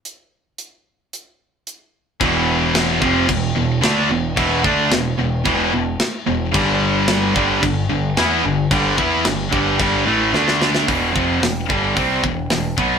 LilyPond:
<<
  \new Staff \with { instrumentName = "Distorted electric guitar" } { \clef bass \time 4/4 \key e \minor \tempo 4 = 111 r1 | <e, b, e>4. <f, c f>8 <e, b,>8 <e, b,>8 <d a d'>8 <e, b,>8 | <e, b, e>8 <d a d'>8 <e, b,>8 <e, b,>8 <e, b, e>8 <e, b,>8 r8 <e, b,>8 | <g, d g>4. <g, d g>8 <g, d>8 <g, d>8 <e b e'>8 <g, d>8 |
<g, d g>8 <e b e'>8 <g, d>8 <g, d g>8 <g, d g>8 <a, e a>8 <d a d'>4 | r1 | }
  \new Staff \with { instrumentName = "Distorted electric guitar" } { \clef bass \time 4/4 \key e \minor r1 | <e, b, e>4. <f, c f>8 <e, b,>8 <e, b,>8 <d a d'>8 <e, b,>8 | <e, b, e>8 <d a d'>8 <e, b,>8 <e, b,>8 <e, b, e>8 <e, b,>8 r8 <e, b,>8 | <g, d g>4. <g, d g>8 <g, d>8 <g, d>8 <e b e'>8 <g, d>8 |
<g, d g>8 <e b e'>8 <g, d>8 <g, d g>8 <g, d g>8 <a, e a>8 <d a d'>4 | <e, b, e>8 <f, c f>8 <e, b,>8 <g, d g>8 <c g c'>8 <e, b,>8 <e, b,>8 <b, fis b>8 | }
  \new Staff \with { instrumentName = "Distorted electric guitar" } { \clef bass \time 4/4 \key e \minor r1 | <e, b, e>4. <f, c f>8 <e, b,>8 <e, b,>8 <d a d'>8 <e, b,>8 | <e, b, e>8 <d a d'>8 <e, b,>8 <e, b,>8 <e, b, e>8 <e, b,>8 r8 <e, b,>8 | <g, d g>4. <g, d g>8 <g, d>8 <g, d>8 <e b e'>8 <g, d>8 |
<g, d g>8 <e b e'>8 <g, d>8 <g, d g>8 <g, d g>8 <a, e a>8 <d a d'>4 | <e, b, e>8 <f, c f>8 <e, b,>8 <g, d g>8 <c g c'>8 <e, b,>8 <e, b,>8 <b, fis b>8 | }
  \new Staff \with { instrumentName = "Picked electric bass" } { \clef bass \time 4/4 \key e \minor r1 | e,,4. f,,8 e,,8 e,,8 d,8 e,,8 | e,,8 d,8 e,,8 e,,8 e,,8 e,,8 r8 e,,8 | g,,4. g,,8 g,,8 g,,8 e,8 g,,8 |
g,,8 e,8 g,,8 g,,8 g,,8 a,,8 d,4 | e,,8 f,,8 e,,8 g,,8 c,8 e,,8 e,,8 b,,8 | }
  \new DrumStaff \with { instrumentName = "Drums" } \drummode { \time 4/4 hh4 hh4 hh4 hh4 | <cymc bd>4 <cymc sn>8 bd8 <cymc bd>4 <cymc sn>4 | <cymc bd>8 bd8 <cymc sn>4 <cymc bd>4 <cymc sn>4 | <cymc bd>4 <cymc sn>8 bd8 <cymc bd>4 <cymc sn>4 |
<cymc bd>8 bd8 <cymc sn>8 bd8 <cymc bd>4 sn16 sn16 sn16 sn16 | <hho bd>8 bd8 <hho sn>8 bd8 <hho bd>8 bd8 <hho sn>8 bd8 | }
>>